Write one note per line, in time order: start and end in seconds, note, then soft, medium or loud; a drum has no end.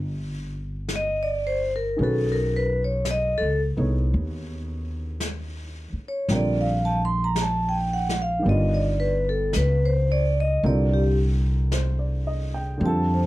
0.00 1.94 G1 medium
0.00 1.98 D3 soft
0.00 1.98 G3 soft
0.00 1.99 C4 soft
0.00 1.99 F4 soft
0.00 1.99 A#4 soft
0.89 brush sweep soft
0.89 snare soft
0.89 hi-hat pedal soft
0.96 1.27 D#5 medium
1.23 1.59 D5 medium
1.47 1.72 C5 medium
1.76 1.96 A#4 medium
1.97 3.38 B1 medium
1.97 6.29 D#3 soft
1.97 6.31 C#4 soft
1.97 6.30 G#4 soft
1.97 brush sweep soft
2.01 6.31 F#4 medium
2.01 2.35 A4 medium
2.01 6.32 B4 medium
2.32 2.67 A#4 medium
2.56 2.81 B4 medium
2.84 3.04 C#5 medium
3.05 brush sweep soft
3.05 snare soft
3.05 hi-hat pedal medium
3.11 3.43 D#5 medium
3.38 3.75 C#2 soft
3.38 3.60 A4 medium
3.77 4.11 C2 medium
3.77 6.30 B3 soft
3.77 6.30 D#4 soft
3.77 6.30 A4 soft
3.77 6.31 C#5 soft
4.13 5.88 D#2 medium
4.13 brush sweep soft
5.20 brush sweep soft
5.20 snare soft
5.20 hi-hat pedal soft
5.93 muted upright bass stroke soft
6.08 6.28 C#5 medium
6.28 8.41 A#1 medium
6.28 8.46 D3 soft
6.28 8.41 G3 soft
6.28 8.46 C4 soft
6.28 8.47 F4 soft
6.28 8.47 A#4 medium
6.28 brush sweep soft
6.28 snare soft
6.35 6.67 D5 medium
6.61 6.97 F5 medium
6.85 6.94 A5 medium
7.05 7.26 C6 medium
7.24 7.37 A#5 medium
7.36 brush sweep soft
7.36 snare soft
7.36 hi-hat pedal soft
7.41 7.74 A5 medium
7.69 8.05 G5 medium
7.93 8.19 F#5 medium
8.09 snare soft
8.22 8.43 F5 medium
8.39 10.61 D#3 soft
8.39 10.62 G3 soft
8.44 9.51 G1 medium
8.44 10.64 B3 soft
8.44 10.65 D4 soft
8.44 brush sweep soft
8.49 10.63 F4 medium
8.49 8.82 D#5 medium
8.74 9.12 D5 medium
9.00 9.27 B4 medium
9.29 9.51 A4 medium
9.53 10.60 C#2 medium
9.53 9.91 B4 medium
9.53 brush sweep soft
9.53 snare soft
9.53 hi-hat pedal medium
9.85 10.23 C5 medium
10.12 10.37 D5 medium
10.40 10.61 D#5 medium
10.63 12.78 C2 medium
10.63 12.76 D3 medium
10.63 12.78 G3 soft
10.63 12.81 C4 soft
10.63 12.82 F4 soft
10.63 12.82 A#4 medium
10.63 11.00 D5 medium
10.63 brush sweep soft
10.94 11.17 G4 medium
11.72 12.23 C5 soft
11.72 brush sweep soft
11.72 snare soft
11.72 hi-hat pedal medium
11.99 12.45 D5 soft
12.27 12.61 D#5 soft
12.54 12.93 G5 soft
12.78 13.26 F2 medium
12.78 13.26 D3 medium
12.78 13.26 G3 soft
12.78 brush sweep soft
12.83 13.26 C4 soft
12.83 13.26 F4 soft
12.83 13.19 A5 medium
12.88 13.26 A4 medium
13.14 13.26 C5 soft